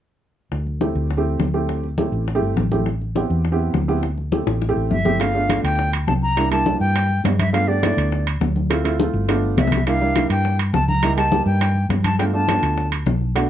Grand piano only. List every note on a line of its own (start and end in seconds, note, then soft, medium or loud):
0.81 1.07 A3 medium
0.81 1.07 C4 medium
0.81 1.07 E4 medium
0.81 1.07 G4 medium
1.17 1.43 A3 medium
1.17 1.43 C4 medium
1.17 1.43 E4 medium
1.17 1.43 G4 medium
1.54 1.85 A3 medium
1.54 1.85 C4 medium
1.54 1.85 E4 medium
1.54 1.85 G4 medium
1.98 2.24 A3 medium
1.98 2.24 C4 medium
1.98 2.24 E4 medium
1.98 2.24 G4 medium
2.35 2.61 A3 medium
2.35 2.61 C4 medium
2.35 2.61 E4 medium
2.35 2.61 G4 medium
2.72 2.86 A3 medium
2.72 2.86 C4 medium
2.72 2.86 E4 medium
2.72 2.86 G4 medium
3.16 3.41 B3 medium
3.16 3.41 C4 medium
3.16 3.41 E4 medium
3.16 3.41 G4 medium
3.52 3.77 B3 medium
3.52 3.78 C4 medium
3.52 3.78 E4 medium
3.52 3.78 G4 medium
3.88 4.03 B3 medium
3.88 4.03 C4 medium
3.88 4.03 E4 medium
3.88 4.03 G4 medium
4.32 4.58 A3 medium
4.32 4.58 C4 medium
4.32 4.58 E4 medium
4.32 4.58 G4 medium
4.69 4.94 A3 medium
4.69 4.95 C4 medium
4.69 4.94 E4 medium
4.69 4.95 G4 medium
5.05 5.18 A3 medium
5.05 5.20 C4 medium
5.05 5.20 E4 medium
5.05 5.20 G4 medium
5.20 5.30 A3 medium
5.20 5.30 B3 medium
5.20 5.30 D4 medium
5.20 5.30 F4 medium
5.35 5.45 A3 medium
5.35 5.45 B3 medium
5.35 5.45 D4 medium
5.35 5.45 F4 medium
5.49 5.90 A3 medium
5.49 5.90 B3 medium
5.49 5.90 D4 medium
5.49 5.90 F4 medium
6.37 6.47 G3 medium
6.37 6.47 A#3 medium
6.37 6.47 D4 medium
6.37 6.47 E4 medium
6.51 6.61 G3 medium
6.51 6.61 A#3 medium
6.51 6.62 D4 medium
6.51 6.62 E4 medium
6.66 7.07 G3 medium
6.66 7.07 A#3 medium
6.66 7.07 D4 medium
6.66 7.07 E4 medium
7.53 7.64 A3 medium
7.53 7.64 B3 medium
7.53 7.64 D4 medium
7.53 7.64 F4 medium
7.68 7.78 A3 medium
7.68 7.78 B3 medium
7.68 7.78 D4 medium
7.68 7.78 G4 medium
7.83 8.24 A3 medium
7.83 8.24 B3 medium
7.83 8.24 D4 medium
7.83 8.24 E4 medium
8.70 8.80 A3 medium
8.70 8.80 C4 medium
8.70 8.80 E4 medium
8.70 8.80 F4 medium
8.84 8.95 A3 medium
8.84 8.95 C4 medium
8.84 8.95 E4 medium
8.84 8.95 F4 medium
8.99 9.27 A3 medium
8.99 9.29 C4 medium
8.99 9.29 E4 medium
8.99 9.27 F4 medium
9.29 9.75 A3 medium
9.29 9.75 B3 medium
9.29 9.75 D4 medium
9.29 9.75 F4 medium
9.87 9.97 G3 medium
9.87 9.97 A#3 medium
9.87 9.97 D4 medium
9.87 9.97 E4 medium
10.01 10.11 G3 medium
10.01 10.11 A#3 medium
10.01 10.12 D4 medium
10.01 10.12 E4 medium
10.16 10.56 G3 medium
10.16 10.56 A#3 medium
10.16 10.56 D4 medium
10.16 10.57 E4 medium
11.03 11.13 G3 medium
11.03 11.13 A#3 medium
11.03 11.13 D#4 medium
11.03 11.13 E4 medium
11.17 11.27 G3 medium
11.17 11.27 A#3 medium
11.17 11.28 D#4 medium
11.17 11.28 G4 medium
11.31 11.73 G3 medium
11.31 11.73 A#3 medium
11.31 11.73 D#4 medium
11.31 11.73 G4 medium
12.19 12.29 A3 medium
12.19 12.29 B3 medium
12.19 12.29 D4 medium
12.19 12.29 F4 medium
12.33 12.44 A3 medium
12.33 12.44 B3 medium
12.33 12.44 D4 medium
12.33 12.44 F4 medium
12.48 12.89 A3 medium
12.48 12.89 B3 medium
12.48 12.89 D4 medium
12.48 12.89 F4 medium
13.35 13.46 A3 medium
13.35 13.46 B3 medium
13.35 13.46 D4 medium
13.35 13.46 F#4 medium